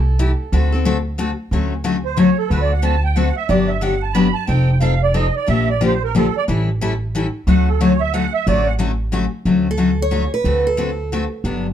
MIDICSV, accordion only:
0, 0, Header, 1, 2, 480
1, 0, Start_track
1, 0, Key_signature, 2, "major"
1, 0, Tempo, 331309
1, 758, Time_signature, 3, 2, 24, 8
1, 16999, End_track
2, 0, Start_track
2, 0, Title_t, "Accordion"
2, 0, Program_c, 0, 21
2, 2972, Note_on_c, 0, 72, 80
2, 3152, Note_off_c, 0, 72, 0
2, 3160, Note_on_c, 0, 73, 78
2, 3442, Note_off_c, 0, 73, 0
2, 3447, Note_on_c, 0, 69, 76
2, 3611, Note_on_c, 0, 71, 64
2, 3629, Note_off_c, 0, 69, 0
2, 3778, Note_off_c, 0, 71, 0
2, 3787, Note_on_c, 0, 74, 81
2, 3946, Note_off_c, 0, 74, 0
2, 3950, Note_on_c, 0, 78, 65
2, 4108, Note_off_c, 0, 78, 0
2, 4117, Note_on_c, 0, 81, 93
2, 4400, Note_off_c, 0, 81, 0
2, 4400, Note_on_c, 0, 79, 85
2, 4573, Note_on_c, 0, 78, 74
2, 4585, Note_off_c, 0, 79, 0
2, 4867, Note_off_c, 0, 78, 0
2, 4878, Note_on_c, 0, 76, 86
2, 5056, Note_on_c, 0, 74, 73
2, 5063, Note_off_c, 0, 76, 0
2, 5332, Note_on_c, 0, 76, 75
2, 5349, Note_off_c, 0, 74, 0
2, 5530, Note_off_c, 0, 76, 0
2, 5532, Note_on_c, 0, 78, 73
2, 5827, Note_off_c, 0, 78, 0
2, 5827, Note_on_c, 0, 81, 89
2, 5986, Note_on_c, 0, 83, 85
2, 6017, Note_off_c, 0, 81, 0
2, 6281, Note_on_c, 0, 81, 93
2, 6293, Note_off_c, 0, 83, 0
2, 6476, Note_on_c, 0, 79, 77
2, 6483, Note_off_c, 0, 81, 0
2, 6939, Note_off_c, 0, 79, 0
2, 6961, Note_on_c, 0, 77, 71
2, 7260, Note_off_c, 0, 77, 0
2, 7281, Note_on_c, 0, 74, 86
2, 7458, Note_on_c, 0, 75, 85
2, 7464, Note_off_c, 0, 74, 0
2, 7748, Note_off_c, 0, 75, 0
2, 7768, Note_on_c, 0, 74, 75
2, 7947, Note_off_c, 0, 74, 0
2, 7955, Note_on_c, 0, 76, 89
2, 8237, Note_off_c, 0, 76, 0
2, 8252, Note_on_c, 0, 74, 80
2, 8429, Note_off_c, 0, 74, 0
2, 8461, Note_on_c, 0, 72, 68
2, 8730, Note_off_c, 0, 72, 0
2, 8744, Note_on_c, 0, 70, 82
2, 8915, Note_off_c, 0, 70, 0
2, 8941, Note_on_c, 0, 69, 75
2, 9209, Note_off_c, 0, 69, 0
2, 9232, Note_on_c, 0, 74, 103
2, 9335, Note_off_c, 0, 74, 0
2, 10840, Note_on_c, 0, 78, 86
2, 11118, Note_off_c, 0, 78, 0
2, 11131, Note_on_c, 0, 69, 64
2, 11307, Note_off_c, 0, 69, 0
2, 11329, Note_on_c, 0, 73, 73
2, 11594, Note_on_c, 0, 76, 99
2, 11603, Note_off_c, 0, 73, 0
2, 11778, Note_off_c, 0, 76, 0
2, 11786, Note_on_c, 0, 78, 96
2, 12071, Note_off_c, 0, 78, 0
2, 12080, Note_on_c, 0, 76, 92
2, 12261, Note_off_c, 0, 76, 0
2, 12284, Note_on_c, 0, 74, 82
2, 12554, Note_on_c, 0, 78, 96
2, 12560, Note_off_c, 0, 74, 0
2, 12668, Note_off_c, 0, 78, 0
2, 16999, End_track
0, 0, End_of_file